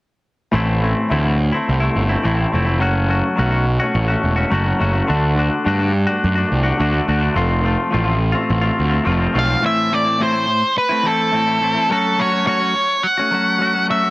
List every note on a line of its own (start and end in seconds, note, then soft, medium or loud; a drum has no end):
0.52 0.92 A1 medium
0.52 1.08 A2 medium
0.52 0.80 E3 medium
0.52 0.82 A3 medium
0.52 0.82 C4 medium
0.52 0.83 E4 medium
0.81 1.09 E3 medium
0.81 1.10 A3 medium
0.81 1.10 C4 medium
0.81 1.11 E4 medium
1.09 1.50 D2 medium
1.09 1.52 A2 medium
1.09 1.37 E3 medium
1.09 1.26 A3 medium
1.09 1.23 C4 medium
1.09 1.21 E4 medium
1.23 1.38 A3 medium
1.23 1.38 C4 medium
1.23 1.38 E4 medium
1.39 muted clean electric guitar stroke soft
1.52 1.83 A3 soft
1.52 1.80 C4 medium
1.52 1.79 E4 medium
1.69 1.88 C2 medium
1.80 2.12 A3 medium
1.80 2.09 C4 medium
1.80 2.08 E4 medium
1.96 2.15 G1 medium
2.09 2.24 A3 soft
2.09 2.24 C4 soft
2.09 2.25 E4 medium
2.22 2.44 A1 medium
2.22 2.66 A2 medium
2.22 2.51 E3 medium
2.22 2.40 A3 medium
2.22 2.38 C4 medium
2.22 2.36 E4 medium
2.37 2.52 A3 soft
2.37 2.53 C4 medium
2.37 2.54 E4 medium
2.52 2.82 F1 medium
2.52 2.79 E3 medium
2.52 2.68 A3 medium
2.52 2.66 C4 medium
2.52 2.64 E4 medium
2.65 2.80 A3 medium
2.65 2.80 C4 medium
2.65 2.79 E4 medium
2.79 3.20 F#1 medium
2.79 3.07 F#3 medium
2.79 3.09 A3 medium
2.79 3.09 C#4 medium
2.79 3.10 F#4 medium
3.08 3.35 F#3 medium
3.08 3.37 A3 medium
3.08 3.37 C#4 medium
3.08 3.39 F#4 medium
3.36 3.77 B1 medium
3.36 3.66 F#3 medium
3.36 3.54 A3 medium
3.36 3.52 C#4 medium
3.36 3.50 F#4 medium
3.51 3.66 A3 medium
3.51 3.66 C#4 medium
3.51 3.67 F#4 medium
3.67 muted clean electric guitar stroke soft
3.80 4.11 A3 medium
3.80 4.08 C#4 medium
3.80 4.07 F#4 medium
3.94 4.14 A1 medium
4.08 4.39 A3 medium
4.08 4.36 C#4 medium
4.08 4.35 F#4 medium
4.23 4.43 E1 medium
4.36 4.51 A3 soft
4.36 4.51 C#4 medium
4.36 4.53 F#4 medium
4.50 4.71 F#1 medium
4.50 4.77 F#3 medium
4.50 4.67 A3 medium
4.50 4.65 C#4 medium
4.50 4.63 F#4 medium
4.64 4.79 A3 soft
4.64 4.79 C#4 medium
4.64 4.80 F#4 medium
4.78 5.00 F#1 medium
4.78 5.06 F#3 medium
4.78 4.96 A3 medium
4.78 4.94 C#4 medium
4.78 4.92 F#4 medium
4.93 5.08 A3 soft
4.93 5.07 C#4 medium
4.93 5.06 F#4 medium
5.07 5.48 D2 medium
5.07 5.34 D3 medium
5.07 5.37 A3 medium
5.07 5.37 D4 medium
5.07 5.38 F#4 medium
5.35 5.63 D3 medium
5.35 5.65 A3 medium
5.35 5.65 D4 medium
5.35 5.67 F#4 medium
5.64 6.05 G2 medium
5.64 5.92 D3 medium
5.64 5.82 A3 medium
5.64 5.80 D4 medium
5.64 5.78 F#4 medium
5.79 5.94 A3 medium
5.79 5.93 D4 medium
5.79 5.93 F#4 medium
5.94 muted clean electric guitar stroke soft
6.07 6.38 A3 medium
6.07 6.36 D4 medium
6.07 6.34 F#4 medium
6.24 6.43 F#2 medium
6.35 6.67 A3 soft
6.35 6.64 D4 medium
6.35 6.62 F#4 medium
6.51 6.71 C2 medium
6.64 6.79 A3 soft
6.64 6.79 D4 medium
6.64 6.80 F#4 medium
6.78 6.99 D2 medium
6.78 7.05 D3 medium
6.78 6.94 A3 medium
6.78 6.91 D4 medium
6.78 6.90 F#4 medium
6.91 7.07 A3 medium
6.91 7.07 D4 medium
6.91 7.08 F#4 medium
7.06 7.27 D2 medium
7.06 7.34 D3 medium
7.06 7.24 A3 medium
7.06 7.21 D4 medium
7.06 7.20 F#4 medium
7.21 7.35 A3 soft
7.21 7.35 D4 medium
7.21 7.34 F#4 medium
7.34 7.74 F1 medium
7.34 7.62 F3 medium
7.34 7.63 A3 medium
7.34 7.64 C4 medium
7.34 7.65 F4 medium
7.63 7.89 F3 medium
7.63 7.91 A3 medium
7.63 7.92 C4 medium
7.63 7.93 F4 medium
7.91 8.32 A1 medium
7.91 8.18 F3 medium
7.91 8.06 A3 medium
7.91 8.05 C4 medium
7.91 8.03 F4 medium
8.04 8.19 A3 medium
8.04 8.18 C4 medium
8.04 8.19 F4 medium
8.19 muted clean electric guitar stroke soft
8.32 8.63 A3 medium
8.32 8.62 C4 medium
8.32 8.60 F4 medium
8.50 8.69 A1 medium
8.61 8.92 A3 soft
8.61 8.90 C4 medium
8.61 8.89 F4 medium
8.79 8.98 D2 medium
8.90 9.04 A3 medium
8.90 9.05 C4 medium
8.90 9.06 F4 medium
9.04 9.26 F1 medium
9.04 9.31 F3 medium
9.04 9.21 A3 medium
9.04 9.19 C4 medium
9.04 9.17 F4 medium
9.19 9.33 A3 medium
9.19 9.34 C4 medium
9.19 9.35 F4 medium
9.33 9.54 B1 medium
9.33 9.60 F3 medium
9.33 9.49 A3 medium
9.33 9.48 C4 medium
9.33 9.46 F4 medium
9.39 9.63 F5 medium
9.48 9.62 A3 medium
9.48 9.62 C4 medium
9.48 9.61 F4 medium
9.61 10.17 A2 medium
9.61 9.89 E3 medium
9.61 9.91 A3 medium
9.61 9.92 C4 medium
9.61 9.93 E4 medium
9.66 9.94 E5 medium
9.91 10.18 E3 medium
9.91 10.08 A3 medium
9.91 10.05 C4 medium
9.91 10.03 E4 medium
9.91 10.22 D5 medium
10.05 10.20 A3 medium
10.05 10.19 C4 medium
10.05 10.20 E4 medium
10.18 10.62 A2 medium
10.18 10.46 E3 medium
10.18 10.35 A3 medium
10.18 10.33 C4 medium
10.18 10.31 E4 medium
10.23 10.78 C5 medium
10.32 10.47 A3 soft
10.32 10.47 C4 medium
10.32 10.47 E4 medium
10.48 muted clean electric guitar stroke soft
10.78 11.07 B4 medium
10.89 11.04 A3 medium
10.89 11.04 C4 medium
10.89 11.05 E4 medium
11.03 11.31 E3 medium
11.03 11.33 A3 medium
11.03 11.33 C4 medium
11.03 11.34 E4 medium
11.03 11.91 A4 medium
11.32 11.75 A2 medium
11.32 11.59 E3 medium
11.32 11.49 A3 medium
11.32 11.47 C4 medium
11.32 11.45 E4 medium
11.46 11.61 A3 medium
11.46 11.61 C4 medium
11.46 11.62 E4 medium
11.60 11.88 E3 medium
11.60 11.78 A3 medium
11.60 11.75 C4 medium
11.60 11.73 E4 medium
11.75 11.89 A3 medium
11.75 11.89 C4 medium
11.75 11.88 E4 medium
11.89 12.17 F#3 medium
11.89 12.19 A3 medium
11.89 12.19 C#4 medium
11.89 12.21 F#4 medium
11.89 12.20 A4 medium
12.18 12.45 F#3 medium
12.18 12.35 A3 medium
12.18 12.32 C#4 medium
12.18 12.31 F#4 medium
12.18 12.46 C#5 medium
12.32 12.46 A3 soft
12.32 12.47 C#4 medium
12.32 12.49 F#4 medium
12.45 12.74 F#3 medium
12.45 12.63 A3 medium
12.45 12.60 C#4 medium
12.45 12.59 F#4 medium
12.45 13.06 C#5 medium
12.60 12.75 A3 medium
12.60 12.75 C#4 medium
12.60 12.76 F#4 medium
12.75 muted clean electric guitar stroke soft
13.03 13.85 F#5 medium
13.18 13.32 A3 medium
13.18 13.32 C#4 medium
13.18 13.33 F#4 medium
13.31 13.57 F#3 medium
13.31 13.60 A3 medium
13.31 13.60 C#4 medium
13.31 13.61 F#4 medium
13.59 13.86 F#3 medium
13.59 13.77 A3 medium
13.59 13.74 C#4 medium
13.59 13.73 F#4 medium
13.74 13.88 A3 medium
13.74 13.88 C#4 medium
13.74 13.89 F#4 medium
13.87 14.10 F#3 medium
13.87 14.05 A3 medium
13.87 14.03 C#4 medium
13.87 14.01 F#4 medium
13.87 14.10 E5 medium
14.02 14.10 A3 soft
14.02 14.10 C#4 medium
14.02 14.10 F#4 medium